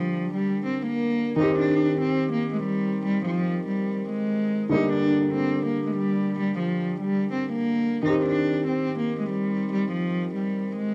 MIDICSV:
0, 0, Header, 1, 3, 480
1, 0, Start_track
1, 0, Key_signature, -3, "minor"
1, 0, Tempo, 416667
1, 1598, Time_signature, 4, 2, 24, 8
1, 12609, End_track
2, 0, Start_track
2, 0, Title_t, "Grand piano"
2, 0, Program_c, 0, 0
2, 0, Control_c, 0, 64, 127
2, 0, Note_on_c, 0, 50, 71
2, 0, Note_on_c, 0, 55, 64
2, 0, Note_on_c, 0, 58, 65
2, 0, Note_on_c, 0, 67, 78
2, 1536, Note_off_c, 0, 50, 0
2, 1545, Note_off_c, 0, 55, 0
2, 1554, Note_off_c, 0, 58, 0
2, 1563, Note_off_c, 0, 67, 0
2, 1567, Note_on_c, 0, 51, 71
2, 1604, Note_on_c, 0, 60, 63
2, 1615, Control_c, 0, 64, 0
2, 1622, Note_on_c, 0, 67, 87
2, 1808, Control_c, 0, 64, 127
2, 5377, Note_off_c, 0, 51, 0
2, 5395, Note_off_c, 0, 60, 0
2, 5404, Note_off_c, 0, 67, 0
2, 5407, Note_on_c, 0, 50, 72
2, 5425, Note_on_c, 0, 55, 64
2, 5443, Note_on_c, 0, 58, 64
2, 5454, Control_c, 0, 64, 0
2, 5462, Note_on_c, 0, 67, 80
2, 5660, Control_c, 0, 64, 127
2, 9216, Note_off_c, 0, 50, 0
2, 9225, Note_off_c, 0, 55, 0
2, 9235, Note_off_c, 0, 58, 0
2, 9244, Note_off_c, 0, 67, 0
2, 9247, Note_on_c, 0, 51, 70
2, 9285, Note_on_c, 0, 60, 65
2, 9292, Control_c, 0, 64, 0
2, 9303, Note_on_c, 0, 67, 77
2, 9477, Control_c, 0, 64, 127
2, 12609, Note_off_c, 0, 51, 0
2, 12609, Note_off_c, 0, 60, 0
2, 12609, Note_off_c, 0, 67, 0
2, 12609, End_track
3, 0, Start_track
3, 0, Title_t, "Cello"
3, 0, Program_c, 1, 42
3, 0, Note_on_c, 1, 53, 89
3, 366, Note_off_c, 1, 53, 0
3, 398, Note_on_c, 1, 55, 91
3, 737, Note_off_c, 1, 55, 0
3, 757, Note_on_c, 1, 60, 73
3, 947, Note_off_c, 1, 60, 0
3, 999, Note_on_c, 1, 58, 87
3, 1563, Note_off_c, 1, 58, 0
3, 1595, Note_on_c, 1, 63, 93
3, 1785, Note_off_c, 1, 63, 0
3, 1837, Note_on_c, 1, 62, 96
3, 2289, Note_off_c, 1, 62, 0
3, 2320, Note_on_c, 1, 60, 86
3, 2657, Note_off_c, 1, 60, 0
3, 2673, Note_on_c, 1, 58, 83
3, 2864, Note_off_c, 1, 58, 0
3, 2913, Note_on_c, 1, 56, 84
3, 3009, Note_off_c, 1, 56, 0
3, 3037, Note_on_c, 1, 55, 91
3, 3489, Note_off_c, 1, 55, 0
3, 3521, Note_on_c, 1, 55, 111
3, 3709, Note_off_c, 1, 55, 0
3, 3756, Note_on_c, 1, 53, 99
3, 4208, Note_off_c, 1, 53, 0
3, 4238, Note_on_c, 1, 55, 76
3, 4689, Note_off_c, 1, 55, 0
3, 4718, Note_on_c, 1, 56, 92
3, 5395, Note_off_c, 1, 56, 0
3, 5439, Note_on_c, 1, 63, 96
3, 5628, Note_off_c, 1, 63, 0
3, 5681, Note_on_c, 1, 62, 90
3, 6131, Note_off_c, 1, 62, 0
3, 6160, Note_on_c, 1, 60, 86
3, 6498, Note_off_c, 1, 60, 0
3, 6518, Note_on_c, 1, 58, 73
3, 6707, Note_off_c, 1, 58, 0
3, 6754, Note_on_c, 1, 56, 72
3, 6850, Note_off_c, 1, 56, 0
3, 6877, Note_on_c, 1, 55, 91
3, 7329, Note_off_c, 1, 55, 0
3, 7360, Note_on_c, 1, 55, 109
3, 7548, Note_off_c, 1, 55, 0
3, 7592, Note_on_c, 1, 53, 89
3, 8046, Note_off_c, 1, 53, 0
3, 8079, Note_on_c, 1, 55, 93
3, 8417, Note_off_c, 1, 55, 0
3, 8438, Note_on_c, 1, 60, 76
3, 8627, Note_off_c, 1, 60, 0
3, 8678, Note_on_c, 1, 58, 86
3, 9242, Note_off_c, 1, 58, 0
3, 9273, Note_on_c, 1, 63, 86
3, 9464, Note_off_c, 1, 63, 0
3, 9515, Note_on_c, 1, 62, 90
3, 9968, Note_off_c, 1, 62, 0
3, 9998, Note_on_c, 1, 60, 85
3, 10336, Note_off_c, 1, 60, 0
3, 10351, Note_on_c, 1, 58, 78
3, 10543, Note_off_c, 1, 58, 0
3, 10593, Note_on_c, 1, 56, 78
3, 10689, Note_off_c, 1, 56, 0
3, 10717, Note_on_c, 1, 55, 89
3, 11169, Note_off_c, 1, 55, 0
3, 11201, Note_on_c, 1, 55, 110
3, 11389, Note_off_c, 1, 55, 0
3, 11436, Note_on_c, 1, 53, 98
3, 11888, Note_off_c, 1, 53, 0
3, 11918, Note_on_c, 1, 55, 77
3, 12369, Note_off_c, 1, 55, 0
3, 12399, Note_on_c, 1, 56, 89
3, 12609, Note_off_c, 1, 56, 0
3, 12609, End_track
0, 0, End_of_file